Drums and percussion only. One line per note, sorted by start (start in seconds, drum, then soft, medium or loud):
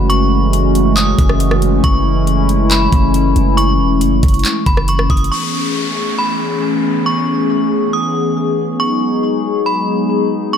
0.10 closed hi-hat medium
0.53 closed hi-hat medium
0.75 closed hi-hat medium
0.97 clap loud
0.97 closed hi-hat medium
1.18 kick loud
1.18 closed hi-hat medium
1.29 cross-stick loud
1.40 closed hi-hat medium
1.51 cross-stick loud
1.62 closed hi-hat medium
1.84 kick loud
1.84 closed hi-hat medium
2.27 closed hi-hat medium
2.49 closed hi-hat medium
2.71 clap loud
2.71 closed hi-hat medium
2.92 kick loud
2.92 closed hi-hat medium
3.14 closed hi-hat medium
3.36 closed hi-hat medium
3.58 closed hi-hat medium
4.01 closed hi-hat medium
4.23 kick loud
4.23 closed hi-hat medium
4.28 closed hi-hat medium
4.34 closed hi-hat medium
4.39 closed hi-hat soft
4.45 clap loud
4.45 closed hi-hat medium
4.66 kick loud
4.66 closed hi-hat medium
4.77 cross-stick loud
4.88 closed hi-hat medium
4.99 cross-stick loud
5.10 kick medium
5.10 closed hi-hat soft
5.17 closed hi-hat medium
5.24 closed hi-hat medium